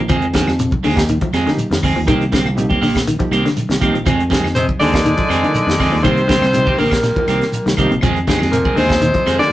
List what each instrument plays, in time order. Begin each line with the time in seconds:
0.09 fingered electric bass F2, clean electric guitar D#3 F3 G#3 C4 G#4, kick, closed hi-hat, high conga, low conga, claves, shekere
0.22 closed hi-hat
0.33 clean electric guitar D3 D#3 G#3 C4 G#4, reed electric piano F3 A#3 D#4 G4, kick, snare, closed hi-hat, high conga, shekere
0.47 fingered electric bass F2, snare, claves
0.59 clean electric guitar C3, closed hi-hat, high conga, shekere
0.71 kick, high conga
0.83 fingered electric bass D#2, clean electric guitar D3 D#3 G#3 C4 G#4, open hi-hat, shekere
0.95 reed electric piano F3 A#3 D#4 G4, kick, snare, claves
1.09 clean electric guitar D#3, closed hi-hat, shekere
1.21 clean electric guitar F3, kick, closed hi-hat, high conga
1.33 fingered electric bass F2, clean electric guitar D#3 G#3 C4 G#4, snare, closed hi-hat, claves, shekere
1.45 clean electric guitar D3, reed electric piano F3 A#3 D#4 G4, snare, closed hi-hat
1.57 muted fingered electric bass stroke, closed hi-hat, high conga, shekere
1.71 fingered electric bass F2, clean electric guitar D#3, snare, closed hi-hat
1.83 fingered electric bass F2, clean electric guitar D#3 G#3 C4 G#4, kick, open hi-hat, low conga, claves, shekere
1.96 fingered electric bass D#2, clean electric guitar F3
2.06 fingered electric bass C2, clean electric guitar D#3 A#3 C4 G4, reed electric piano F3 A#3 D#4 G4, kick, closed hi-hat, high conga, low conga, claves, shekere
2.22 closed hi-hat
2.32 clean electric guitar D3 D#3 A#3 C4 G4, kick, snare, closed hi-hat, high conga, shekere
2.45 fingered electric bass C2, closed hi-hat, claves
2.55 clean electric guitar C3, reed electric piano F3 A#3 D#4 G4, closed hi-hat, shekere
2.70 clean electric guitar A#3 C4 G4, kick, high conga
2.81 fingered electric bass A#1, clean electric guitar D3 D#3 A#3 G4, muted clean electric guitar stroke, open hi-hat, shekere
2.95 kick, snare, closed hi-hat, claves
3.07 clean electric guitar D#3, closed hi-hat, high conga, shekere
3.19 reed electric piano F3 A#3 D#4 G4, clean electric guitar F3, kick, high conga
3.31 fingered electric bass C2, clean electric guitar D#3 A#3 C4 G4, closed hi-hat, claves, shekere
3.45 clean electric guitar D3, snare, closed hi-hat
3.56 muted fingered electric bass stroke, closed hi-hat, high conga, shekere
3.69 fingered electric bass C2, clean electric guitar D#3, snare, closed hi-hat
3.80 fingered electric bass C2, clean electric guitar D#3 A#3 C4 G4, reed electric piano F3 A#3 D#4 G4, kick, closed hi-hat, low conga, claves, shekere
3.94 fingered electric bass A#1, clean electric guitar F3, closed hi-hat
4.06 fingered electric bass F2, clean electric guitar D#3 F3 G#3 C4 G#4, kick, closed hi-hat, high conga, low conga, claves, shekere
4.20 closed hi-hat
4.30 clean electric guitar D3 D#3 G#3 C4 G#4, reed electric piano F3 A#3 D#4 G4, kick, snare, closed hi-hat, high conga, shekere
4.43 fingered electric bass F2, snare, claves
4.55 baritone saxophone C3, clean electric guitar C3, tenor saxophone G#3, alto saxophone C5, closed hi-hat, high conga, shekere
4.68 kick, high conga
4.79 fingered electric bass D#2, clean electric guitar D3 D#3 G#3 C4 G#4, baritone saxophone D3, tenor saxophone G#3, alto saxophone D5, open hi-hat, shekere
4.93 reed electric piano F3 A#3 D#4 A#4, kick, snare, claves
5.05 clean electric guitar D#3, closed hi-hat, high conga, shekere
5.17 clean electric guitar F3, kick, closed hi-hat, high conga
5.29 fingered electric bass F2, clean electric guitar D#3 G#3 C4 G#4, snare, closed hi-hat, claves, shekere
5.42 clean electric guitar D3, reed electric piano F3 A#3 D#4 A#4, closed hi-hat
5.54 muted fingered electric bass stroke, closed hi-hat, high conga, shekere
5.67 fingered electric bass F2, clean electric guitar D#3, snare, closed hi-hat
5.79 fingered electric bass F2, clean electric guitar D#3 G#3 C4 G#4, kick, open hi-hat, low conga, claves, shekere
5.92 fingered electric bass D#2, clean electric guitar F3
6.02 fingered electric bass C2, baritone saxophone C3, clean electric guitar D#3 A#3 C4 G4, reed electric piano F3 A#3 D#4 G4, tenor saxophone G3, alto saxophone C5, kick, closed hi-hat, high conga, low conga, claves, shekere
6.17 closed hi-hat
6.28 clean electric guitar D3 D#3 A#3 C4 G4, kick, snare, closed hi-hat, high conga, shekere
6.42 fingered electric bass C2, snare, closed hi-hat, claves
6.54 clean electric guitar C3, reed electric piano F3 A#3 D#4 G4, closed hi-hat, shekere
6.66 clean electric guitar A#3 C4 G4, kick, high conga
6.78 fingered electric bass A#1, baritone saxophone A#2, clean electric guitar D3 D#3 A#3 C4 G4, tenor saxophone G3, alto saxophone A#4, open hi-hat, shekere
6.91 kick, snare, closed hi-hat, claves
7.03 muted clean electric guitar stroke, snare, closed hi-hat, high conga, shekere
7.16 clean electric guitar F3, reed electric piano F3 A#3 D#4 A#4, muted fingered electric bass stroke, kick, high conga
7.28 fingered electric bass C2, clean electric guitar D#3 A#3 C4 G4, snare, closed hi-hat, claves, shekere
7.41 snare, closed hi-hat
7.52 muted fingered electric bass stroke, closed hi-hat, high conga, shekere
7.66 fingered electric bass C2, clean electric guitar D#3, snare, closed hi-hat, high conga
7.77 fingered electric bass C2, clean electric guitar D#3 A#3 C4 G4, reed electric piano F3 A#3 D#4 G4, kick, closed hi-hat, low conga, claves, shekere
7.91 fingered electric bass A#1, clean electric guitar C3, closed hi-hat
8.01 fingered electric bass F2, clean electric guitar D#3 F3 G#3 C4 G#4, kick, closed hi-hat, high conga, low conga, claves, shekere
8.16 closed hi-hat
8.27 clean electric guitar D3 D#3 G#3 C4 G#4, reed electric piano F3 A#3 D#4 G4, kick, snare, closed hi-hat, high conga, shekere
8.39 fingered electric bass F2, clean electric guitar G#3 C4 G#4, snare, claves
8.51 baritone saxophone A#2, clean electric guitar C3, tenor saxophone F3, alto saxophone A#4, closed hi-hat, shekere
8.64 clean electric guitar G#3 C4 G#4, kick, high conga
8.75 fingered electric bass D#2, baritone saxophone C3, clean electric guitar D3 D#3 G#3 C4 G#4, tenor saxophone G#3, alto saxophone C5, open hi-hat, shekere
8.89 reed electric piano F3 A#3 D#4 G4, kick, snare, claves
9.01 clean electric guitar D#3, closed hi-hat, shekere
9.14 clean electric guitar F3, kick, closed hi-hat, high conga
9.26 fingered electric bass F2, clean electric guitar D#3 G#3 C4 G#4, snare, closed hi-hat, claves, shekere
9.38 baritone saxophone D3, clean electric guitar D3, reed electric piano F3 A#3 D#4 G4, tenor saxophone A#3, alto saxophone D5, snare, closed hi-hat